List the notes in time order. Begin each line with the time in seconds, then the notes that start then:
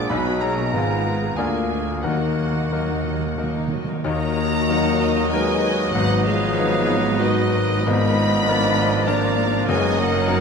Already playing: A#1 A#2 F3 A#3 D4 F4 G#4 A#4 D5 F5 F#5 A#5 D6 D#6
0.09 B1 B2 F#3 G#3 D#4 F#4 G#4 B4 D#5 B5
0.25 F#3 F#4 G#4
0.40 G#3 A#3 D#4 F#4 A#4 C#5 A#5
0.57 F#3 F#4 G#4
0.73 G#1 G#2 G#3 B3 F4 G#4 B4 F5
0.89 B3 G#4
1.04 G#3 F4 B4
1.20 B3 G#4
1.36 D2 D3 G#3 A#3 F4 G#4 A#4 D5 F5 G#5
1.54 A#3 D4 A#4
1.70 G#3 F4 G#4
1.88 A#3 D4 A#4
2.03 D#2 D#3 F#3 A#3 D#4 F#4 A#4 D#5 F#5
2.21 D#3 A#3 D#4 A#4
2.29 D#3
2.36 D#3 F#3 F#4 D#5
2.45 D#3
2.53 D#3 A#3 D#4 A#4
2.62 D#3
2.69 D#3 F#3 A#3 D#4 F#4 A#4 D#5
2.78 D#3
2.86 D#3 A#3 D#4 A#4
2.95 D#3
3.03 D#3 F#3 F#4 D#5
3.11 D#3
3.19 D#3 A#3 D#4 A#4
3.26 D#3
3.35 D#3 F#3 A#3 D#4 F#4 A#4
3.40 D#3 D#5
3.51 D#3
3.55 A#3 D#4 A#4
3.59 D#3
3.68 D#3
3.72 D#3 F#3 F#4 D#5
3.85 D#3
3.89 D#3 A#3 D#4 A#4
4.04 D#2 D#3 F#3 A#3 D#4 F#4 A#4 D#5 A#5
4.69 F#3 D#4 A#4 F#5
5.03 D#5
5.33 F#3 G#3 D#4 A#4 B4 G#5
5.94 G#1 G#2 F#3 B3 D#4 B4 F#5
6.25 F3 G#4 F5
6.58 F#3 D#4 B4 C#5
7.19 D#3 F#3 D#4 F#4 B4 D#5
7.53 A#4
7.85 G#1 G#2 F3 A#3 B3 D4 A#4 D#5 B5
8.48 F3 D4 A#4 D5
8.79 D#5
9.07 F3 A#3 D4 A#4 D5 F5 A#5
9.68 F#1 F#2 F#3 G#3 D#4 B4 D#5 G#5
9.98 F#3 A#4 F#5
10.28 F#3 D#4 A#4 C#5